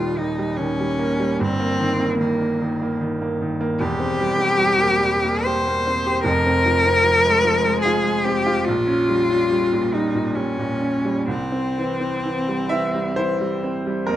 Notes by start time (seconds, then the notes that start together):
Already playing: D#1 D#2 D#3 G3 A#3 F4
0.17 D#3 D#4
0.39 G3
0.57 D#3 C#4
0.80 G3
0.99 A#3
1.19 G3
1.39 G1 G2 C4
1.60 A#3
1.80 D#3
2.00 A#3
2.19 D#3 A#3
2.42 A#3
2.62 D#3
2.82 A#3
3.01 D#3
3.22 A#3
3.41 D#3
3.61 A#3
3.78 E1 E2 G4
4.00 C4
4.20 G3
4.38 C4
4.58 G3
4.79 A#3
5.02 G3
5.25 A#3
5.43 G4 C5
5.68 A#3
5.87 C4
6.06 G4
6.24 F1 F2 A#4
6.46 C4
6.66 F3
6.86 C4
7.04 F3
7.25 G#3
7.45 F3
7.65 G#3
7.82 F4 G#4
8.04 G#3
8.24 C4 G4
8.46 F4
8.65 A#1 F4
8.87 C#4
9.09 G3
9.31 C#4
9.52 G3
9.72 A#2
9.93 G3 D#4
10.15 A#2
10.35 G3 C#4
10.59 A#2
10.81 C#4
11.05 G3
11.28 C2 C4
11.52 C4
11.78 E3
12.00 C4
12.25 E3
12.48 G3
12.69 E3 E5
12.95 G3
13.16 E3 C5
13.41 G3
13.64 C4
13.87 G3
14.06 F2 A#3 A#4